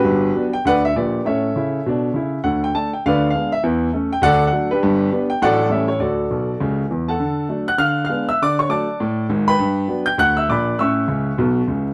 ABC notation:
X:1
M:4/4
L:1/16
Q:"Swing" 1/4=201
K:D
V:1 name="Grand piano"
[FGB]6 g2 [Bdf]2 e2 [GBd]4 | [Ace]12- [Ace]2 z2 | f2 g2 a2 g2 [Bd=f]3 f3 e2 | z6 g2 [Adf]3 f3 [DGB]2- |
[DGB]6 g2 [Adf]4 [Ace]2 c2 | [FAd]12 z2 [Afa]2- | [Afa]6 [ff']2 [=f=f']3 [ff']3 [ee']2 | [dd']2 [cc']2 [dad']8 z2 [Bgb]2- |
[Bgb]6 [gg']2 [ff']2 [ee']2 [dbd']4 | [ec'e']12- [ec'e']2 z2 |]
V:2 name="Grand piano" clef=bass
[G,,,G,,]4 [F,B,D]4 [D,,D,]4 [_B,,,_B,,]4 | [A,,C]4 [C,E]4 [B,,D]4 [C,E]4 | [D,,D,]4 [A,D]4 [D,,D,]4 [_A,B,D]4 | [E,,E,]4 [A,C]4 [D,,D,]4 [F,A,D]4 |
[G,,,G,,]4 [G,B,D]4 [A,,,A,,F,A,D]4 [A,,,A,,G,A,C]4 | [D,,D,]4 [B,,,B,,]4 [C,,C,]4 [E,,E,]4 | D,4 [F,A,D]4 D,4 [_A,B,D]4 | D,4 [F,A,D]4 A,,4 [^G,,,^G,,]4 |
G,,4 [F,B,D]4 D,,4 [_B,,,_B,,]4 | [A,,C]4 [C,,C,]4 [B,,,B,,]4 [C,,C,]4 |]